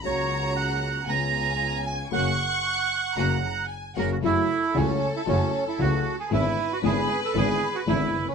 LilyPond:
<<
  \new Staff \with { instrumentName = "Violin section" } { \time 4/4 \key fis \major \tempo 4 = 115 ais''2 gis''2 | cis'''2 ais''8 ais''8 gis''8 fis''8 | \key fis \minor a'1 | b'1 | }
  \new Staff \with { instrumentName = "Bandoneon" } { \time 4/4 \key fis \major cis''4 fis''4 ais''4. gis''8 | fis''2. r8 ais'16 fis'16 | \key fis \minor e'4 cis'8. e'16 cis'8. e'16 fis'8. gis'16 | e'8. fis'16 gis'8. a'16 gis'8. fis'16 e'8. cis'16 | }
  \new Staff \with { instrumentName = "String section" } { \time 4/4 \key fis \major <ais cis' fis'>2 <b cis' eis'>2 | <ais cis' fis'>8 r4. <ais cis' fis'>8 r4 <ais cis' fis'>8 | \key fis \minor <a e' fis'>8 r8 <a e' fis'>8 r8 <a e' fis'>8 r8 <a e' fis'>8 r8 | <gis d' e'>8 r8 <gis d' e'>8 r8 <gis d' e'>8 r8 <gis d' e'>8 r8 | }
  \new Staff \with { instrumentName = "Grand piano" } { \clef bass \time 4/4 \key fis \major <cis, cis fis ais fis'>2 <cis, cis gis b eis'>2 | <cis fis ais>8 r4. <cis fis ais>8 r4 <cis fis ais>8 | \key fis \minor <fis, cis fis a e'>8 r8 <cis, cis fis a e'>8 r8 <fis, cis fis a e'>8 r8 <cis, cis fis a e'>8 r8 | <gis,, gis, d gis b e'>8 r8 <gis,, gis, d gis b e'>8 r8 <gis,, gis, d gis b e'>8 r8 <gis,, gis, d gis b e'>8 r32 eis,,32 fis,,32 r32 | }
  \new Staff \with { instrumentName = "Double bass" } { \clef bass \time 4/4 \key fis \major cis,2 cis,2 | fis,,8 r4. fis,,8 r4 fis,,8 | \key fis \minor fis,,8 r8 cis,8 r8 fis,,8 r8 cis,8 r8 | gis,,8 r8 gis,,8 r8 gis,,8 r8 gis,,8 fis,,8 | }
>>